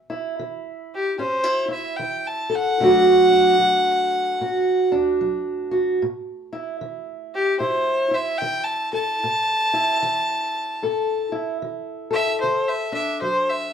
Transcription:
0, 0, Header, 1, 3, 480
1, 0, Start_track
1, 0, Tempo, 801068
1, 1677, Time_signature, 4, 2, 24, 8
1, 8228, End_track
2, 0, Start_track
2, 0, Title_t, "Fiddle"
2, 0, Program_c, 0, 110
2, 566, Note_on_c, 0, 67, 84
2, 712, Note_off_c, 0, 67, 0
2, 715, Note_on_c, 0, 72, 87
2, 1026, Note_off_c, 0, 72, 0
2, 1035, Note_on_c, 0, 76, 77
2, 1177, Note_on_c, 0, 79, 86
2, 1186, Note_off_c, 0, 76, 0
2, 1357, Note_on_c, 0, 81, 89
2, 1366, Note_off_c, 0, 79, 0
2, 1527, Note_on_c, 0, 78, 115
2, 1536, Note_off_c, 0, 81, 0
2, 2941, Note_off_c, 0, 78, 0
2, 4400, Note_on_c, 0, 67, 97
2, 4548, Note_off_c, 0, 67, 0
2, 4552, Note_on_c, 0, 72, 99
2, 4878, Note_on_c, 0, 76, 85
2, 4887, Note_off_c, 0, 72, 0
2, 5021, Note_on_c, 0, 79, 98
2, 5030, Note_off_c, 0, 76, 0
2, 5175, Note_on_c, 0, 81, 86
2, 5184, Note_off_c, 0, 79, 0
2, 5343, Note_off_c, 0, 81, 0
2, 5351, Note_on_c, 0, 81, 113
2, 6771, Note_off_c, 0, 81, 0
2, 7269, Note_on_c, 0, 76, 99
2, 7428, Note_off_c, 0, 76, 0
2, 7435, Note_on_c, 0, 72, 80
2, 7596, Note_on_c, 0, 76, 90
2, 7605, Note_off_c, 0, 72, 0
2, 7752, Note_off_c, 0, 76, 0
2, 7755, Note_on_c, 0, 76, 90
2, 7911, Note_off_c, 0, 76, 0
2, 7921, Note_on_c, 0, 72, 89
2, 8088, Note_on_c, 0, 76, 89
2, 8097, Note_off_c, 0, 72, 0
2, 8228, Note_off_c, 0, 76, 0
2, 8228, End_track
3, 0, Start_track
3, 0, Title_t, "Steel-string acoustic guitar"
3, 0, Program_c, 1, 25
3, 0, Note_on_c, 1, 45, 71
3, 59, Note_on_c, 1, 64, 62
3, 193, Note_off_c, 1, 45, 0
3, 236, Note_on_c, 1, 52, 65
3, 679, Note_off_c, 1, 52, 0
3, 709, Note_on_c, 1, 45, 62
3, 711, Note_off_c, 1, 64, 0
3, 714, Note_on_c, 1, 61, 65
3, 860, Note_off_c, 1, 61, 0
3, 860, Note_on_c, 1, 64, 52
3, 1001, Note_off_c, 1, 64, 0
3, 1008, Note_on_c, 1, 64, 59
3, 1156, Note_off_c, 1, 45, 0
3, 1194, Note_on_c, 1, 52, 65
3, 1495, Note_on_c, 1, 69, 65
3, 1639, Note_off_c, 1, 52, 0
3, 1654, Note_off_c, 1, 64, 0
3, 1678, Note_on_c, 1, 50, 70
3, 1683, Note_on_c, 1, 54, 56
3, 1685, Note_on_c, 1, 57, 57
3, 1690, Note_on_c, 1, 62, 58
3, 1696, Note_off_c, 1, 69, 0
3, 1699, Note_on_c, 1, 66, 71
3, 1965, Note_off_c, 1, 62, 0
3, 1972, Note_on_c, 1, 62, 67
3, 2121, Note_off_c, 1, 50, 0
3, 2146, Note_off_c, 1, 54, 0
3, 2153, Note_on_c, 1, 54, 68
3, 2599, Note_off_c, 1, 54, 0
3, 2639, Note_off_c, 1, 66, 0
3, 2640, Note_on_c, 1, 45, 61
3, 2646, Note_on_c, 1, 66, 70
3, 2934, Note_off_c, 1, 62, 0
3, 2947, Note_on_c, 1, 62, 59
3, 3083, Note_off_c, 1, 45, 0
3, 3121, Note_on_c, 1, 54, 64
3, 3417, Note_off_c, 1, 66, 0
3, 3424, Note_on_c, 1, 66, 60
3, 3564, Note_off_c, 1, 54, 0
3, 3584, Note_off_c, 1, 62, 0
3, 3604, Note_off_c, 1, 66, 0
3, 3609, Note_on_c, 1, 45, 77
3, 3910, Note_on_c, 1, 64, 63
3, 4048, Note_off_c, 1, 45, 0
3, 4081, Note_on_c, 1, 52, 61
3, 4524, Note_off_c, 1, 52, 0
3, 4552, Note_off_c, 1, 64, 0
3, 4552, Note_on_c, 1, 45, 64
3, 4555, Note_on_c, 1, 64, 60
3, 4853, Note_off_c, 1, 64, 0
3, 4860, Note_on_c, 1, 64, 54
3, 4999, Note_off_c, 1, 45, 0
3, 5044, Note_on_c, 1, 52, 66
3, 5350, Note_on_c, 1, 69, 62
3, 5485, Note_off_c, 1, 52, 0
3, 5501, Note_off_c, 1, 64, 0
3, 5524, Note_off_c, 1, 57, 0
3, 5532, Note_on_c, 1, 45, 67
3, 5833, Note_on_c, 1, 64, 59
3, 5969, Note_off_c, 1, 45, 0
3, 6007, Note_on_c, 1, 52, 62
3, 6446, Note_off_c, 1, 52, 0
3, 6487, Note_on_c, 1, 45, 58
3, 6488, Note_off_c, 1, 69, 0
3, 6491, Note_on_c, 1, 69, 63
3, 6776, Note_off_c, 1, 64, 0
3, 6783, Note_on_c, 1, 64, 58
3, 6926, Note_off_c, 1, 45, 0
3, 6963, Note_on_c, 1, 52, 64
3, 7251, Note_off_c, 1, 69, 0
3, 7254, Note_on_c, 1, 69, 59
3, 7403, Note_off_c, 1, 52, 0
3, 7420, Note_off_c, 1, 64, 0
3, 7448, Note_on_c, 1, 50, 65
3, 7743, Note_on_c, 1, 62, 62
3, 7885, Note_off_c, 1, 50, 0
3, 7920, Note_on_c, 1, 54, 65
3, 8228, Note_off_c, 1, 54, 0
3, 8228, Note_off_c, 1, 62, 0
3, 8228, Note_off_c, 1, 69, 0
3, 8228, End_track
0, 0, End_of_file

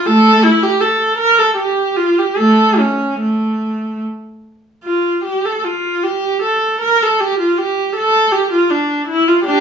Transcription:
0, 0, Header, 1, 2, 480
1, 0, Start_track
1, 0, Tempo, 751880
1, 40, Time_signature, 3, 2, 24, 8
1, 1000, Tempo, 813008
1, 3880, Tempo, 750939
1, 5898, End_track
2, 0, Start_track
2, 0, Title_t, "Viola"
2, 0, Program_c, 0, 41
2, 38, Note_on_c, 0, 57, 75
2, 40, Note_on_c, 0, 69, 87
2, 260, Note_off_c, 0, 57, 0
2, 276, Note_on_c, 0, 64, 80
2, 278, Note_off_c, 0, 69, 0
2, 397, Note_off_c, 0, 64, 0
2, 402, Note_on_c, 0, 67, 72
2, 516, Note_on_c, 0, 69, 62
2, 519, Note_off_c, 0, 67, 0
2, 755, Note_on_c, 0, 70, 82
2, 756, Note_off_c, 0, 69, 0
2, 874, Note_off_c, 0, 70, 0
2, 886, Note_on_c, 0, 69, 72
2, 1001, Note_on_c, 0, 67, 67
2, 1004, Note_off_c, 0, 69, 0
2, 1229, Note_off_c, 0, 67, 0
2, 1235, Note_on_c, 0, 65, 69
2, 1354, Note_off_c, 0, 65, 0
2, 1367, Note_on_c, 0, 67, 60
2, 1474, Note_on_c, 0, 69, 73
2, 1477, Note_on_c, 0, 57, 64
2, 1480, Note_off_c, 0, 67, 0
2, 1699, Note_off_c, 0, 57, 0
2, 1714, Note_off_c, 0, 69, 0
2, 1722, Note_on_c, 0, 61, 55
2, 1959, Note_off_c, 0, 61, 0
2, 1963, Note_on_c, 0, 57, 55
2, 2437, Note_off_c, 0, 57, 0
2, 2933, Note_on_c, 0, 65, 62
2, 3158, Note_off_c, 0, 65, 0
2, 3173, Note_on_c, 0, 67, 58
2, 3291, Note_off_c, 0, 67, 0
2, 3295, Note_on_c, 0, 69, 55
2, 3407, Note_on_c, 0, 65, 61
2, 3414, Note_off_c, 0, 69, 0
2, 3638, Note_on_c, 0, 67, 67
2, 3645, Note_off_c, 0, 65, 0
2, 3868, Note_on_c, 0, 69, 64
2, 3875, Note_off_c, 0, 67, 0
2, 4115, Note_on_c, 0, 70, 78
2, 4116, Note_off_c, 0, 69, 0
2, 4241, Note_off_c, 0, 70, 0
2, 4250, Note_on_c, 0, 69, 66
2, 4367, Note_on_c, 0, 67, 73
2, 4371, Note_off_c, 0, 69, 0
2, 4489, Note_off_c, 0, 67, 0
2, 4489, Note_on_c, 0, 65, 57
2, 4606, Note_on_c, 0, 67, 66
2, 4607, Note_off_c, 0, 65, 0
2, 4846, Note_off_c, 0, 67, 0
2, 4849, Note_on_c, 0, 69, 80
2, 5079, Note_on_c, 0, 67, 70
2, 5082, Note_off_c, 0, 69, 0
2, 5201, Note_off_c, 0, 67, 0
2, 5207, Note_on_c, 0, 65, 67
2, 5323, Note_off_c, 0, 65, 0
2, 5326, Note_on_c, 0, 62, 63
2, 5563, Note_off_c, 0, 62, 0
2, 5563, Note_on_c, 0, 64, 85
2, 5679, Note_off_c, 0, 64, 0
2, 5693, Note_on_c, 0, 65, 72
2, 5797, Note_on_c, 0, 67, 95
2, 5801, Note_on_c, 0, 62, 78
2, 5806, Note_off_c, 0, 65, 0
2, 5898, Note_off_c, 0, 62, 0
2, 5898, Note_off_c, 0, 67, 0
2, 5898, End_track
0, 0, End_of_file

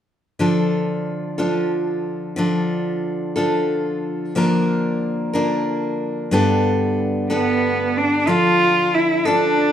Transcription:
0, 0, Header, 1, 3, 480
1, 0, Start_track
1, 0, Key_signature, -1, "minor"
1, 0, Tempo, 656455
1, 297, Time_signature, 6, 3, 24, 8
1, 7109, End_track
2, 0, Start_track
2, 0, Title_t, "Cello"
2, 0, Program_c, 0, 42
2, 5347, Note_on_c, 0, 59, 63
2, 5829, Note_on_c, 0, 62, 61
2, 5840, Note_off_c, 0, 59, 0
2, 6056, Note_on_c, 0, 65, 75
2, 6067, Note_off_c, 0, 62, 0
2, 6536, Note_on_c, 0, 64, 58
2, 6547, Note_off_c, 0, 65, 0
2, 6774, Note_on_c, 0, 62, 67
2, 6785, Note_off_c, 0, 64, 0
2, 7109, Note_off_c, 0, 62, 0
2, 7109, End_track
3, 0, Start_track
3, 0, Title_t, "Steel-string acoustic guitar"
3, 0, Program_c, 1, 25
3, 287, Note_on_c, 1, 50, 50
3, 290, Note_on_c, 1, 53, 49
3, 294, Note_on_c, 1, 62, 54
3, 296, Note_on_c, 1, 65, 53
3, 302, Note_on_c, 1, 69, 56
3, 1000, Note_off_c, 1, 69, 0
3, 1008, Note_off_c, 1, 65, 0
3, 1008, Note_on_c, 1, 69, 44
3, 1011, Note_on_c, 1, 65, 45
3, 1015, Note_off_c, 1, 62, 0
3, 1018, Note_off_c, 1, 50, 0
3, 1018, Note_on_c, 1, 62, 45
3, 1019, Note_off_c, 1, 53, 0
3, 1021, Note_on_c, 1, 50, 37
3, 1022, Note_on_c, 1, 53, 41
3, 1724, Note_off_c, 1, 50, 0
3, 1727, Note_on_c, 1, 50, 60
3, 1732, Note_off_c, 1, 53, 0
3, 1735, Note_off_c, 1, 69, 0
3, 1735, Note_on_c, 1, 53, 50
3, 1738, Note_off_c, 1, 62, 0
3, 1740, Note_off_c, 1, 65, 0
3, 1741, Note_on_c, 1, 62, 55
3, 1743, Note_on_c, 1, 65, 58
3, 1747, Note_on_c, 1, 69, 55
3, 2446, Note_off_c, 1, 69, 0
3, 2455, Note_on_c, 1, 69, 53
3, 2459, Note_off_c, 1, 65, 0
3, 2461, Note_off_c, 1, 62, 0
3, 2461, Note_on_c, 1, 65, 49
3, 2464, Note_on_c, 1, 62, 40
3, 2466, Note_off_c, 1, 53, 0
3, 2469, Note_on_c, 1, 53, 43
3, 2471, Note_off_c, 1, 50, 0
3, 2474, Note_on_c, 1, 50, 43
3, 3173, Note_off_c, 1, 50, 0
3, 3177, Note_off_c, 1, 53, 0
3, 3178, Note_off_c, 1, 69, 0
3, 3181, Note_on_c, 1, 50, 55
3, 3182, Note_off_c, 1, 65, 0
3, 3184, Note_off_c, 1, 62, 0
3, 3185, Note_on_c, 1, 53, 56
3, 3186, Note_on_c, 1, 58, 58
3, 3192, Note_on_c, 1, 62, 65
3, 3198, Note_on_c, 1, 70, 64
3, 3892, Note_off_c, 1, 70, 0
3, 3901, Note_off_c, 1, 50, 0
3, 3901, Note_on_c, 1, 70, 49
3, 3903, Note_off_c, 1, 53, 0
3, 3904, Note_off_c, 1, 58, 0
3, 3907, Note_off_c, 1, 62, 0
3, 3910, Note_on_c, 1, 62, 54
3, 3913, Note_on_c, 1, 53, 43
3, 3915, Note_on_c, 1, 58, 47
3, 3917, Note_on_c, 1, 50, 39
3, 4610, Note_off_c, 1, 50, 0
3, 4616, Note_on_c, 1, 43, 57
3, 4619, Note_on_c, 1, 50, 51
3, 4620, Note_off_c, 1, 53, 0
3, 4621, Note_off_c, 1, 70, 0
3, 4622, Note_off_c, 1, 58, 0
3, 4623, Note_on_c, 1, 55, 59
3, 4625, Note_on_c, 1, 59, 65
3, 4627, Note_off_c, 1, 62, 0
3, 4630, Note_on_c, 1, 62, 64
3, 4633, Note_on_c, 1, 69, 67
3, 5327, Note_off_c, 1, 62, 0
3, 5329, Note_off_c, 1, 69, 0
3, 5332, Note_off_c, 1, 59, 0
3, 5336, Note_off_c, 1, 55, 0
3, 5336, Note_on_c, 1, 62, 53
3, 5338, Note_off_c, 1, 43, 0
3, 5338, Note_on_c, 1, 69, 49
3, 5339, Note_off_c, 1, 50, 0
3, 5341, Note_on_c, 1, 59, 44
3, 5345, Note_on_c, 1, 55, 50
3, 5348, Note_on_c, 1, 50, 42
3, 5354, Note_on_c, 1, 43, 41
3, 6039, Note_off_c, 1, 50, 0
3, 6045, Note_off_c, 1, 62, 0
3, 6047, Note_off_c, 1, 55, 0
3, 6048, Note_on_c, 1, 50, 49
3, 6050, Note_on_c, 1, 53, 53
3, 6051, Note_off_c, 1, 59, 0
3, 6054, Note_on_c, 1, 62, 53
3, 6055, Note_off_c, 1, 69, 0
3, 6063, Note_on_c, 1, 69, 57
3, 6066, Note_off_c, 1, 43, 0
3, 6757, Note_off_c, 1, 69, 0
3, 6766, Note_on_c, 1, 69, 55
3, 6778, Note_off_c, 1, 62, 0
3, 6778, Note_on_c, 1, 65, 43
3, 6781, Note_on_c, 1, 62, 49
3, 6782, Note_off_c, 1, 53, 0
3, 6785, Note_off_c, 1, 50, 0
3, 6785, Note_on_c, 1, 53, 37
3, 6788, Note_on_c, 1, 50, 40
3, 7109, Note_off_c, 1, 50, 0
3, 7109, Note_off_c, 1, 53, 0
3, 7109, Note_off_c, 1, 62, 0
3, 7109, Note_off_c, 1, 65, 0
3, 7109, Note_off_c, 1, 69, 0
3, 7109, End_track
0, 0, End_of_file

